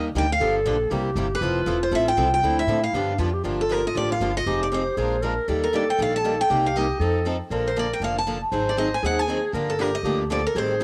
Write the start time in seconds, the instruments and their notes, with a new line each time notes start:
Already playing: upright bass D#2
0.15 upright bass D2, steel-string acoustic guitar D#3 G3 A#3 D4 G4 G5
0.32 steel-string acoustic guitar F5
0.40 upright bass G1, steel-string acoustic guitar D3 F3 A#3 D4 G4, clarinet A4
0.66 upright bass A#1, steel-string acoustic guitar D3 F3 A#3 D4 G4
0.91 upright bass C2, steel-string acoustic guitar C3 G3 A#3 E4 G4, clarinet G4
1.16 upright bass G1, steel-string acoustic guitar C3 G3 A#3 E4 G4
1.35 steel-string acoustic guitar B4
1.41 upright bass F1, steel-string acoustic guitar F3 C4 E4 A4, clarinet F4
1.66 upright bass E1, steel-string acoustic guitar F3 C4 E4 A4
1.83 steel-string acoustic guitar C5
1.91 upright bass A1, steel-string acoustic guitar F3 C4 E4 A4 E5
2.08 steel-string acoustic guitar G5
2.17 upright bass C2, steel-string acoustic guitar F3 C4 E4 A4
2.34 steel-string acoustic guitar G5
2.43 upright bass D2, steel-string acoustic guitar D3 F3 C4 D4 A4, clarinet E4
2.59 steel-string acoustic guitar E5
2.67 upright bass A2, steel-string acoustic guitar D3 F3 C4 D4 A4
2.83 steel-string acoustic guitar F5
2.93 upright bass G2, steel-string acoustic guitar D3 F3 B3 D4 G4, clarinet D4
3.18 upright bass F2, steel-string acoustic guitar D3 F3 B3 D4 G4, clarinet F4
3.33 clarinet G4
3.44 upright bass G1, steel-string acoustic guitar D3 F3 A#3 D4 G4, clarinet F4
3.61 steel-string acoustic guitar A4
3.69 steel-string acoustic guitar D3 F3 A#3 D4 G4 A#4
3.87 steel-string acoustic guitar D#5
3.95 upright bass A1, steel-string acoustic guitar D3 F3 A#3 D4 G4 D5
4.12 steel-string acoustic guitar F5
4.20 upright bass G1, steel-string acoustic guitar D3 F3 A#3 D4 G4
4.37 steel-string acoustic guitar D#5
4.46 upright bass F1, steel-string acoustic guitar F3 C4 D#4 G#4, clarinet G4
4.63 steel-string acoustic guitar D5
4.72 steel-string acoustic guitar F3 C4 D#4 G#4 C5
4.97 upright bass A#1, steel-string acoustic guitar F3 G#3 D4 F4 A#4, clarinet G#4
5.22 steel-string acoustic guitar F3 G#3 D4 F4 A#4, clarinet A#4
5.48 upright bass D#2, steel-string acoustic guitar D#3 G3 A#3 D4 G4, clarinet A4
5.64 steel-string acoustic guitar A#4
5.73 steel-string acoustic guitar D#3 G3 A#3 D4 G4 D5
5.90 steel-string acoustic guitar G5
5.99 upright bass A#1, steel-string acoustic guitar D#3 G3 A#3 D4 G4 F5
6.16 steel-string acoustic guitar A5
6.24 steel-string acoustic guitar D#3 G3 A#3 D4 G4
6.41 steel-string acoustic guitar G5
6.50 upright bass C2, steel-string acoustic guitar C3 G3 A#3 D#4 G4, clarinet G4
6.66 steel-string acoustic guitar F5
6.76 steel-string acoustic guitar C3 G3 A#3 D#4 G4 D#5
7.00 upright bass F2, steel-string acoustic guitar F3 C4 D#4 A4, clarinet A4
7.25 steel-string acoustic guitar F3 C4 D#4 A4
7.50 upright bass A#1, steel-string acoustic guitar D3 F3 A#3 D4 A4, clarinet A#4
7.68 steel-string acoustic guitar C5
7.76 steel-string acoustic guitar D3 F3 A#3 D4 A4 D5
7.93 steel-string acoustic guitar G5
8.00 upright bass F1, steel-string acoustic guitar D3 F3 A#3 D4 A4
8.04 steel-string acoustic guitar F5
8.19 steel-string acoustic guitar A5
8.27 steel-string acoustic guitar D3 F3 A#3 D4 A4
8.52 upright bass G#1, steel-string acoustic guitar D#3 F#3 C4 D#4 G#4, clarinet C5
8.69 steel-string acoustic guitar D5
8.77 steel-string acoustic guitar D#3 F#3 C4 D#4 G#4 D#5
8.94 steel-string acoustic guitar G#5
9.03 upright bass D#2, steel-string acoustic guitar D#3 F#3 C4 D#4 G#4 F#5, clarinet G#4
9.19 steel-string acoustic guitar G#5
9.29 steel-string acoustic guitar D#3 F#3 C4 D#4 G#4
9.53 upright bass G1, steel-string acoustic guitar D3 F3 A#3 D4 G4, clarinet A#4
9.70 steel-string acoustic guitar A4
9.79 steel-string acoustic guitar D3 F3 A#3 D4 G4 A#4, clarinet G4
9.95 steel-string acoustic guitar D#5
10.03 upright bass D2, steel-string acoustic guitar D3 F3 A#3 D4 G4, clarinet G4
10.30 steel-string acoustic guitar D3 F3 A#3 D4 G4 D5, clarinet A4
10.47 steel-string acoustic guitar A#4
10.55 upright bass A1, steel-string acoustic guitar D#3 G3 C4 G4 A4 C5, clarinet G#4
10.80 steel-string acoustic guitar D#3 G3 C4 G4